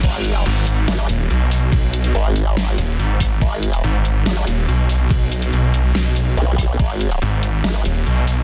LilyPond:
<<
  \new Staff \with { instrumentName = "Detuned saw bass" } { \clef bass \time 4/4 \key gis \minor \tempo 4 = 142 r4 gis,,4 r8 dis,,8 b,,4~ | b,,4 r4. dis,,8 gis,,4 | r4 gis,,4 r8 dis,,8 b,,4~ | b,,4 b,,4 b,,4 r4 |
r4 gis,,4 r8 dis,,8 b,,4 | }
  \new Staff \with { instrumentName = "Wobble bass" } { \clef bass \time 4/4 \key gis \minor gis,,4 r4 gis,,8 r4. | r4 gis,,4. r4. | gis,,4 r4 gis,,8 r4. | r2. b,,4 |
gis,,4 r4 gis,,8 r4. | }
  \new DrumStaff \with { instrumentName = "Drums" } \drummode { \time 4/4 <cymc bd cymr>8 hh16 hh16 cymr8 hh8 <cymr sn>8 hh8 cymr8 hho8 | <bd cymr>8 hh16 hh16 cymr8 hh8 <cymr sn>8 hh8 cymr8 <hho bd>8 | <bd cymr>8 hh16 hh16 cymr8 hh8 <cymr sn>8 hh8 cymr8 hho8 | <bd cymr>8 hh16 hh16 cymr8 hh8 <cymr sn>8 hh8 cymr8 <hho bd>8 |
<bd cymr>8 hh16 hh16 cymr8 hh8 <cymr sn>8 hh8 cymr8 hho8 | }
>>